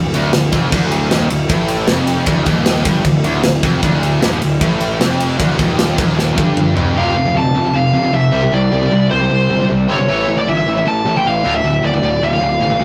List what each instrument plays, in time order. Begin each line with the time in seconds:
Already playing: picked electric bass D1, distorted electric guitar D2
0.13 picked electric bass D1, distorted electric guitar D2, ride
0.33 picked electric bass D1, distorted electric guitar D2, snare, ride
0.52 picked electric bass F1, distorted electric guitar F2, kick, ride
0.72 picked electric bass D1, distorted electric guitar D2, kick, crash
0.92 ride
1.11 picked electric bass D#1, distorted electric guitar D#2, snare, ride
1.30 picked electric bass D1, distorted electric guitar D2, ride
1.49 picked electric bass A1, distorted electric guitar A2, kick, ride
1.68 ride
1.87 picked electric bass F1, distorted electric guitar F2, snare, ride
2.07 ride
2.26 picked electric bass D1, distorted electric guitar D2, kick, ride
2.46 picked electric bass D#1, distorted electric guitar D#2, kick, ride
2.66 snare, ride
2.85 picked electric bass G1, distorted electric guitar G2, kick, ride
3.05 picked electric bass D1, distorted electric guitar D2, kick, ride
3.24 picked electric bass D1, distorted electric guitar D2, ride
3.43 picked electric bass D1, distorted electric guitar D2, snare, ride
3.62 picked electric bass F1, distorted electric guitar F2, kick, ride
3.82 picked electric bass D1, distorted electric guitar D2, kick, ride
4.03 ride
4.22 picked electric bass D#1, distorted electric guitar D#2, snare, ride
4.41 picked electric bass D1, distorted electric guitar D2, ride
4.61 picked electric bass A1, distorted electric guitar A2, kick, ride
4.81 ride
5.00 picked electric bass F1, distorted electric guitar F2, snare, ride
5.20 ride
5.39 picked electric bass D1, distorted electric guitar D2, kick, ride
5.58 picked electric bass D#1, distorted electric guitar D#2, kick, ride
5.79 snare, ride
5.98 picked electric bass D#1, distorted electric guitar D#2, kick, ride
6.19 snare
6.38 picked electric bass G1, distorted electric guitar G2, kick
6.57 mid tom
6.77 picked electric bass F1, distorted electric guitar F2, floor tom
6.95 picked electric bass F1, distorted electric guitar F2 C3 F3, lead electric guitar F5
7.15 picked electric bass F1, distorted electric guitar F2 C3
7.27 distorted electric guitar F2 C3
7.35 picked electric bass D1, distorted electric guitar F2 C3, lead electric guitar A5
7.55 picked electric bass F1, distorted electric guitar F2 C3
7.65 distorted electric guitar F2 C3
7.74 picked electric bass F1, distorted electric guitar F2 C3, lead electric guitar F5
7.93 picked electric bass F1, distorted electric guitar F2 C3
8.04 distorted electric guitar F2 C3
8.13 picked electric bass F1, distorted electric guitar F2 C3, lead electric guitar E5
8.31 picked electric bass C2, distorted electric guitar C3 G3 C4
8.42 distorted electric guitar C3 G3
8.51 picked electric bass C2, distorted electric guitar C3 G3, lead electric guitar D5
8.72 picked electric bass C2, distorted electric guitar C3 G3
8.81 distorted electric guitar C3 G3
8.90 picked electric bass C2, distorted electric guitar C3 G3
9.10 picked electric bass C2, distorted electric guitar C3 G3, lead electric guitar C5
9.20 distorted electric guitar C3 G3
9.30 picked electric bass C2, distorted electric guitar C3 G3
9.49 picked electric bass G1, distorted electric guitar C3 G3
9.59 distorted electric guitar C3 G3
9.69 picked electric bass C2, distorted electric guitar C3 G3
9.88 picked electric bass G1, distorted electric guitar C3 G3 C4, lead electric guitar C#5
9.98 distorted electric guitar C3 G3
10.08 picked electric bass A1, distorted electric guitar A2 E3 A3
10.28 picked electric bass A1, distorted electric guitar A2 E3
10.37 distorted electric guitar A2 E3, lead electric guitar D5
10.47 picked electric bass G1, distorted electric guitar A2 E3, lead electric guitar E5
10.58 lead electric guitar E5
10.66 picked electric bass A1, distorted electric guitar A2 E3
10.76 distorted electric guitar A2 E3
10.85 picked electric bass A1, distorted electric guitar A2 E3, lead electric guitar A5
11.05 picked electric bass A1, distorted electric guitar A2 E3
11.15 distorted electric guitar A2 E3, lead electric guitar G5
11.25 picked electric bass A1, distorted electric guitar A2 E3, lead electric guitar F5
11.44 picked electric bass D1, distorted electric guitar D2 A2 D3
11.54 distorted electric guitar D2 A2, lead electric guitar E5
11.64 picked electric bass D1, distorted electric guitar D2 A2
11.82 picked electric bass D1, distorted electric guitar D2 A2, lead electric guitar D5
11.93 distorted electric guitar D2 A2
12.01 picked electric bass D1, distorted electric guitar D2 A2
12.21 picked electric bass D1, distorted electric guitar D2 A2, lead electric guitar F5
12.33 distorted electric guitar D2 A2
12.40 picked electric bass D1, distorted electric guitar D2 A2
12.60 picked electric bass A1, distorted electric guitar D2 A2
12.71 distorted electric guitar D2 A2
12.79 picked electric bass D2, distorted electric guitar D2 A2